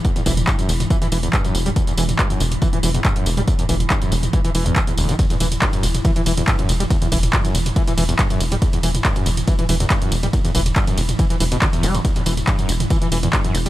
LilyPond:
<<
  \new Staff \with { instrumentName = "Synth drone" } { \clef bass \time 4/4 \key e \minor \tempo 4 = 140 e1~ | e1~ | e1 | e1~ |
e1~ | e1~ | e1~ | e1 | }
  \new Staff \with { instrumentName = "Acid bass" } { \clef bass \time 4/4 \key e \minor e,16 e,16 e16 r16 g,16 fis,16 e,,16 r16 e16 e16 e16 e,16 g,16 fis,16 e,,16 g16 | e,16 e,16 e16 r16 g,16 fis,16 e,,16 r16 e16 e16 e16 e,16 g,16 fis,16 e,,16 g16 | e,16 e,16 e16 r16 g,16 fis,16 e,,16 r16 e16 e16 e16 e,16 e,16 e,16 d,16 e16 | e,16 e,16 e16 r16 g,16 fis,16 e,,16 r16 e16 e16 e16 e,16 g,16 fis,16 e,,16 g16 |
e,16 e,16 e16 r16 g,16 fis,16 e,,16 r16 e16 e16 e16 e,16 g,16 fis,16 e,,16 g16 | e,16 e,16 e16 r16 g,16 fis,16 e,,16 r16 e16 e16 e16 e,16 g,16 fis,16 e,,16 g16 | e,16 e,16 e16 r16 g,16 fis,16 e,,16 r16 e16 e16 e16 b,16 d16 e,16 g16 e,16 | e,16 e,16 e16 r16 g,16 fis,16 e,,16 r16 e16 e16 e16 e,16 g,16 fis,16 e,,16 g16 | }
  \new Staff \with { instrumentName = "Analog synth bass" } { \clef bass \time 4/4 \key e \minor r8 e,,8 r8 e,,8 r8 e,,8 r8 e,,8 | r8 e,,8 r8 e,,8 r8 e,,8 r8 e,,8 | r8 e,,8 r8 e,,8 r8 e,,8 r8 e,,8 | r8 e,,8 r8 e,,8 r8 e,,8 r8 e,,8 |
r8 e,,8 r8 e,,8 r8 e,,8 r8 e,,8 | r8 e,,8 r8 e,,8 r8 e,,8 r8 e,,8 | r8 e,,8 r8 e,,8 r8 e,,8 r8 e,,8 | r8 e,,8 r8 e,,8 r8 e,,8 r8 e,,8 | }
  \new DrumStaff \with { instrumentName = "Drums" } \drummode { \time 4/4 <hh bd tamb>16 <hh tamb toml>16 <hho bd tamb>16 <hh tamb toml>16 <hc hh bd tamb>16 <hh tamb toml>16 <hho tamb>16 <hh tamb toml>16 <hh bd tamb>16 <hh tamb toml>16 <hho tamb>16 <hh tamb toml>16 <hc hh bd tamb>16 <hh tamb toml>16 <hho tamb>16 <hh tamb toml>16 | <hh bd tamb>16 <hh tamb toml>16 <hho tamb>16 <hh tamb toml>16 <hc hh bd tamb>16 <hh tamb toml>16 <hho tamb>16 <hh tamb toml>16 <hh bd tamb>16 <hh toml>16 <hho tamb>16 <hh tamb toml>16 <hc hh bd tamb>16 <hh toml>16 <hho tamb>16 <hh tamb toml>16 | <hh bd tamb>16 <hh tamb toml>16 <hho bd tamb>16 <hh tamb toml>16 <hc hh bd tamb>16 <hh tamb toml>16 <hho tamb>16 <hh tamb toml>16 <hh bd tamb>16 <hh tamb toml>16 <hho tamb>16 <hh tamb toml>16 <hc hh bd tamb>16 <hh tamb toml>16 <hho tamb>16 <hh tamb toml>16 | <hh bd cymr tamb>16 <hh cymr tamb toml>16 <hho cymr tamb>16 <hh cymr tamb toml>16 <hc hh bd cymr tamb>16 <hh cymr tamb toml>16 <hho cymr tamb>16 <hh cymr tamb toml>16 <hh bd cymr tamb>16 <hh cymr toml>16 <hho cymr tamb>16 <hh cymr tamb toml>16 <hc hh bd cymr tamb>16 <hh cymr toml>16 <hho cymr tamb>16 <hh cymr tamb toml>16 |
<hh bd cymr tamb>16 <hh cymr tamb toml>16 <hho bd cymr tamb>16 <hh cymr tamb toml>16 <hc hh bd cymr tamb>16 <hh cymr tamb toml>16 <hho cymr tamb>16 <hh cymr tamb toml>16 <hh bd cymr tamb>16 <hh cymr tamb toml>16 <hho cymr tamb>16 <hh cymr tamb toml>16 <hc hh bd cymr tamb>16 <hh cymr tamb toml>16 <hho cymr tamb>16 <hh cymr tamb toml>16 | <hh bd cymr tamb>16 <hh cymr tamb toml>16 <hho cymr tamb>16 <hh cymr tamb toml>16 <hc hh bd cymr tamb>16 <hh cymr tamb toml>16 <hho cymr tamb>16 <hh cymr tamb toml>16 <hh bd cymr tamb>16 <hh cymr toml>16 <hho cymr tamb>16 <hh cymr tamb toml>16 <hc hh bd cymr tamb>16 <hh cymr toml>16 <hho cymr tamb>16 <hh cymr tamb toml>16 | <hh bd cymr tamb>16 <hh cymr tamb toml>16 <hho bd cymr tamb>16 <hh cymr tamb toml>16 <hc hh bd cymr tamb>16 <hh cymr tamb toml>16 <hho cymr tamb>16 <hh cymr tamb toml>16 <hh bd cymr tamb>16 <hh cymr tamb toml>16 <hho cymr tamb>16 <hh cymr tamb toml>16 <hc hh bd cymr tamb>16 <hh cymr tamb toml>16 <hho cymr tamb>16 <hh cymr tamb toml>16 | <hh bd cymr tamb>16 <hh cymr tamb toml>16 <hho cymr tamb>16 <hh cymr tamb toml>16 <hc hh bd cymr tamb>16 <hh cymr tamb toml>16 <hho cymr tamb>16 <hh cymr tamb toml>16 <hh bd cymr tamb>16 <hh cymr toml>16 <hho cymr tamb>16 <hh cymr tamb toml>16 <hc hh bd cymr tamb>16 <hh cymr toml>16 <hho cymr tamb>16 <hh cymr tamb toml>16 | }
>>